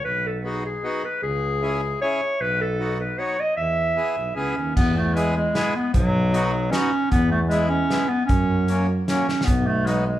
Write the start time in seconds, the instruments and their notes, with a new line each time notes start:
0.04 tuba B1, clarinet B4
0.26 clarinet A4
0.40 accordion B3, clarinet A4
0.45 accordion D#4 F#4, clarinet G#4
0.66 clarinet G#4
0.83 accordion B3 D#4 F#4
1.05 clarinet B4
1.23 tuba C#2, clarinet G#4
1.62 accordion C#4 E4 G#4
2.01 accordion C#4 E4 G#4, clarinet C#5
2.40 tuba B1, clarinet B4
2.61 clarinet A4
2.79 accordion B3 D#4 F#4
3.00 clarinet B4
3.17 accordion B3 D#4 F#4, clarinet C#5
3.40 clarinet D#5
3.57 tuba E2, clarinet E5
3.96 accordion B3 E4 G#4
4.18 tuba B1
4.35 tuba C#2, accordion B3 E4 G#4, clarinet C#4
4.58 tuba D#2
4.76 tuba E2, clarinet B3, kick, crash
4.97 clarinet A3
5.14 clarinet G#3, accordion B3 E4 G#4, closed hi-hat
5.36 clarinet G#3
5.54 accordion B3 E4 G#4, snare, closed hi-hat
5.76 clarinet B3
5.93 tuba B1, clarinet F#3, kick, closed hi-hat
6.32 accordion B3 D#4 F#4, closed hi-hat
6.71 accordion B3 D#4 F#4, clarinet C#4, snare, closed hi-hat
7.11 tuba E2, clarinet B3, kick, closed hi-hat
7.31 clarinet A3
7.48 clarinet G#3, accordion G#3 B3 E4, closed hi-hat
7.68 clarinet C#4
7.89 accordion G#3 B3 E4, snare, closed hi-hat
8.08 clarinet B3
8.26 tuba F#2, clarinet C#4, kick, closed hi-hat
8.68 accordion F#3 A#3 C#4, closed hi-hat
9.05 accordion F#3 A#3 C#4, clarinet C#4, snare, closed hi-hat
9.29 snare
9.41 clarinet B3, snare
9.47 tuba B1, kick, closed hi-hat
9.67 clarinet A3
9.85 accordion F#3 B3 D#4, clarinet G#3, closed hi-hat
10.06 clarinet G#3